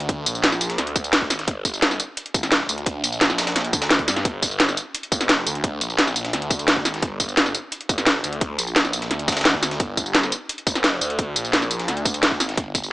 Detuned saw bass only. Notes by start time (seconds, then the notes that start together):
Already playing: D2
0.26 A#1
0.78 D2
1.30 G#1
1.48 G1
2.34 G1
2.69 D2
3.04 A#1
3.56 A#1
3.73 D2
4.08 G2
4.25 G1
5.12 G1
5.47 D2
5.81 A#1
6.33 D2
6.85 G#1
7.03 G1
7.89 G1
8.24 D2
8.59 A#1
9.11 D2
9.80 G1
10.67 G1
11.01 D2
11.36 A#1
11.88 D2
12.40 G#1
12.57 G1